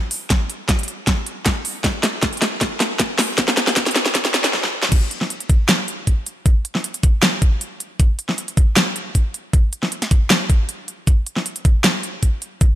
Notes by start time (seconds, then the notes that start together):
0.11 open hi-hat
0.30 kick, snare, closed hi-hat
0.50 closed hi-hat
0.69 kick, snare, closed hi-hat
0.79 closed hi-hat
0.83 closed hi-hat
0.88 closed hi-hat
1.07 kick, snare, closed hi-hat
1.27 closed hi-hat
1.46 kick, snare, closed hi-hat
1.65 open hi-hat
1.84 kick, snare, closed hi-hat
2.03 snare, closed hi-hat
2.23 kick, snare, closed hi-hat
2.33 closed hi-hat
2.37 closed hi-hat
2.42 snare, closed hi-hat
2.61 kick, snare, closed hi-hat
2.80 snare, closed hi-hat
2.99 kick, snare, closed hi-hat
3.19 snare, open hi-hat
3.38 kick, snare, closed hi-hat
3.48 snare
3.57 snare, closed hi-hat
3.67 snare
3.76 kick, snare, closed hi-hat
3.87 snare, closed hi-hat
3.91 closed hi-hat
3.96 snare, closed hi-hat
4.06 snare
4.15 kick, snare, closed hi-hat
4.25 snare
4.34 snare, closed hi-hat
4.44 snare
4.53 snare
4.63 snare
4.83 snare
4.92 kick, closed hi-hat, crash
5.11 closed hi-hat
5.21 snare
5.30 closed hi-hat
5.40 closed hi-hat
5.50 kick, closed hi-hat
5.69 snare, closed hi-hat
5.88 closed hi-hat
6.07 kick, closed hi-hat
6.26 closed hi-hat
6.46 kick, closed hi-hat
6.65 closed hi-hat
6.75 snare
6.84 closed hi-hat
6.94 closed hi-hat
7.03 kick, closed hi-hat
7.23 snare, closed hi-hat
7.42 kick, closed hi-hat
7.61 closed hi-hat
7.80 closed hi-hat
8.00 kick, closed hi-hat
8.19 closed hi-hat
8.29 snare
8.38 closed hi-hat
8.48 closed hi-hat
8.57 kick, closed hi-hat
8.77 snare, closed hi-hat
8.96 closed hi-hat
9.15 kick, closed hi-hat
9.34 closed hi-hat
9.53 kick, closed hi-hat
9.73 closed hi-hat
9.83 snare
9.92 closed hi-hat
10.02 snare, closed hi-hat
10.11 kick, closed hi-hat
10.30 snare, closed hi-hat
10.50 kick, closed hi-hat
10.69 closed hi-hat
10.88 closed hi-hat
11.07 kick, closed hi-hat
11.27 closed hi-hat
11.37 snare
11.46 closed hi-hat
11.56 closed hi-hat
11.65 kick, closed hi-hat
11.84 snare, closed hi-hat
12.03 closed hi-hat
12.23 kick, closed hi-hat
12.42 closed hi-hat
12.61 kick, closed hi-hat